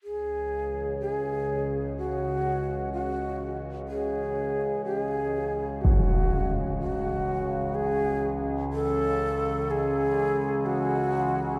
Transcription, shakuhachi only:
0.03 G#4
1.00 G#4
1.97 F#4
2.93 F#4
3.88 G#4
4.85 G4
5.02 G#4
5.81 F#4
6.79 F#4
7.75 G#4
8.73 A4
9.71 G#4
10.66 F#4

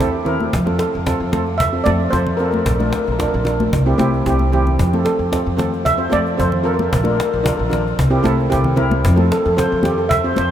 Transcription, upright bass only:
0.01 E2
0.54 F2
0.95 F2
1.20 F2
1.86 F2
2.13 F2
2.67 A#1
3.08 A#1
3.34 A#1
3.73 C2
3.98 C2
4.27 C2
4.79 F2
5.19 F2
5.46 F2
6.13 F2
6.40 F2
6.93 A#1
7.33 A#1
7.59 A#1
7.99 C2
8.25 C2
8.53 C2
9.05 F2
9.46 F2
9.72 F2
10.38 F2

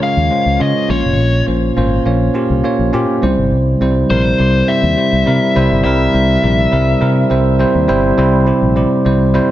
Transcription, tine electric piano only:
Already playing: C#3 G#3 C#4 F4 A#4 C#5
0.02 G#3 C#4 F4 D#5
0.31 G#3 C#4 F4 C5
0.59 G#3 C#4 F4 C#5
0.89 A#2 A#3 C#4 F4 C#5
1.47 A#3 C#4 F4 C5
1.77 A#3 C#4 F4 C5
2.05 A#3 C#4 F4 C#5
2.34 A#3 C#4 F4 G4
2.64 A#3 C#4 F4 C#5
2.93 A#3 C#4 F4 G4
3.22 C3 G3 C4 E4 C5
3.81 G3 C4 E4 C5
4.10 G3 C4 E4 A#4
4.39 G3 C4 E4 G4
4.68 G3 C4 E4 C5
4.97 G3 C4 E4 C5
5.26 G3 C4 E4 A#4
5.55 C3 G3 C4 E4 C5
5.85 G3 C4 E4 A#4
6.13 G3 C4 E4 C5
6.43 G3 C4 E4 A#4
6.72 G3 C4 E4 A#4
7.01 G3 C4 E4 A#4
7.30 G3 C4 E4 C5
7.59 G3 C4 E4 C5
7.88 G3 C4 E4 C5
8.18 C3 G3 C4 E4 C5
8.46 G3 C4 E4 G4
8.76 G3 C4 E4 G4
9.05 G3 C4 E4 C5
9.34 G3 C4 E4 C5

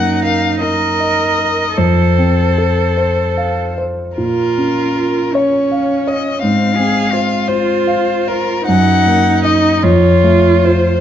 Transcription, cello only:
Already playing: D#4
0.62 A#4
1.77 A4
4.17 F4
5.35 C#4
6.41 C4
6.76 G#4
7.12 F4
8.67 D#4
9.83 F4

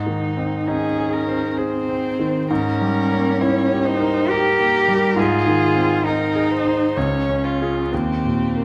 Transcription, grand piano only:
Already playing: G#2
0.07 D#3
0.37 C4
0.67 D#4
0.99 G#4
1.28 C5
1.59 G#4
1.89 C4
2.19 D#3
2.50 G#2
2.81 G3
3.12 A#3
3.41 E4
3.72 G4
4.00 A#4
4.31 G4
4.60 A#3
4.88 G3
5.16 G#2
5.47 D#3
5.75 C4
6.06 D#4
6.35 G#4
6.65 C5
6.97 C#2
7.29 C#4
7.62 F4 G#4
7.93 D#2
8.25 A#2
8.57 A#3

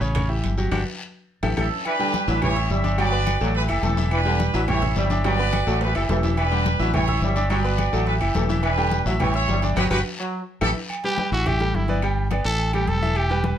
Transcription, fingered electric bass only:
0.01 A1
0.44 G1
0.72 G1
1.43 A1
1.58 A1
2.28 A1
2.70 G1
3.41 A1
3.69 F#1
3.83 E1
4.54 A1
4.96 G1
5.67 A1
5.95 F#1
6.09 E1
6.80 A1
7.22 G1
7.93 A1
8.21 F#1
8.35 E1
9.06 A1
9.48 G1
9.77 G1
9.91 G1
10.62 A1
11.32 A1
11.74 G1
12.45 A1
12.87 E1

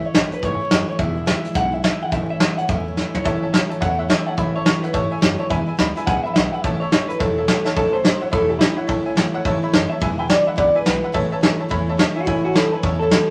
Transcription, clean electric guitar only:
0.06 C#5
0.34 B4
0.44 C#5
0.89 C#5
0.99 E5
1.28 E5
1.56 F#5
1.74 E5
1.85 E5
2.03 F#5
2.12 E5
2.30 E5
2.58 F#5
2.70 E5
3.15 C#5
3.26 E5
3.82 F#5
3.99 E5
4.10 E5
4.26 F#5
4.39 E5
4.56 C#5
4.66 C#5
4.83 B4
4.94 C#5
5.40 C#5
5.50 E5
6.07 F#5
6.24 E5
6.34 E5
6.52 F#5
6.62 E5
6.80 C#5
7.08 B4
7.19 A4
7.76 A4
7.93 C5
8.33 A4
8.49 G4
8.59 E4
8.77 E4
9.89 E5
10.19 G5
10.30 D5
10.47 E5
10.58 D5
10.76 B4
12.16 F#4
12.27 E4
12.44 F#4
12.55 A4
12.72 B4
12.83 C#5
13.00 A4

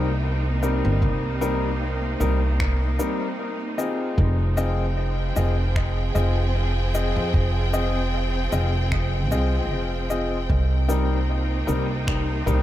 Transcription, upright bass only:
Already playing: C2
0.85 G1
1.02 C2
2.21 C2
4.18 F1
5.37 F1
6.15 F1
7.16 F2
7.34 F1
8.52 F1
9.31 C2
9.71 F1
10.50 C2
11.68 C2
12.47 C2

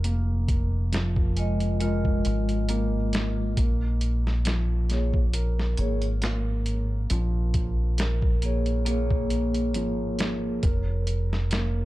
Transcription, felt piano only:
Already playing: F3 A#4
0.04 A#3
0.92 F3
1.81 A#4
2.69 A#3
3.57 A#3
4.45 F3
5.34 A#4
6.22 A#3
7.10 F3
7.98 A#4
8.87 A#3
9.75 F3
10.63 A#4
11.51 A#3

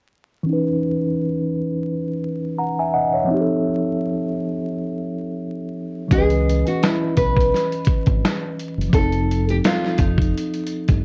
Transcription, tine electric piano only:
0.43 E3 C#4
0.49 D#4 B4
2.59 F#5 A#5
2.79 E5 G#5
2.94 D#5 F#5
3.13 C#5 E5
3.25 F3 C4
3.31 D#4 G4
3.41 A4
6.08 E3 C#4
6.15 B4 D#5
8.89 F3 C4
8.96 D#4 A4

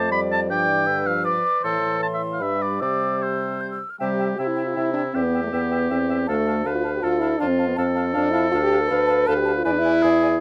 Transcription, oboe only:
Already playing: A5
0.12 B5
0.32 A5
0.51 G5
1.07 F5
1.25 D5
1.64 A4
2.03 A5
2.14 E5
2.33 F5
2.42 E5
2.62 D5
2.82 D5
3.22 C5
4.01 G4
4.40 E4
5.15 G4
6.28 A4
6.66 B4
7.04 A4
7.41 F4
7.78 A4
9.27 B4
9.65 B4
10.02 G#4

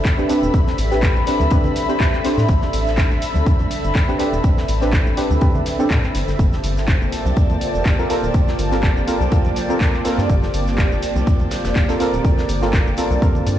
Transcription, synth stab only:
0.18 C4 D4 G4 B4
0.29 C4 D4 G4 B4
0.91 C4 D4 G4 B4
1.27 C4 D4 G4 B4
1.51 C4 D4 G4 B4
1.88 C4 D4 G4 C5
2.24 C4 D4 G4 C5
4.08 C4 D4 G4 B4
4.19 C4 D4 G4 B4
4.81 C4 D4 G4 B4
5.17 C4 D4 G4 B4
5.41 C4 D4 G4 B4
5.79 C4 D4 G4 A4
7.98 C4 F4 A4 A#4
8.09 C4 F4 A4 A#4
8.71 C4 F4 A4 A#4
9.07 C4 F4 A4 A#4
9.31 C4 F4 A4 A#4
9.69 C4 F4 A4 A#4
10.04 C4 F4 A4 A#4
11.88 C4 F4 A4 A#4
11.99 C4 F4 A4 A#4
12.62 C4 F4 A4 A#4
12.97 C4 F4 A4 A#4
13.22 C4 F4 A4 A#4

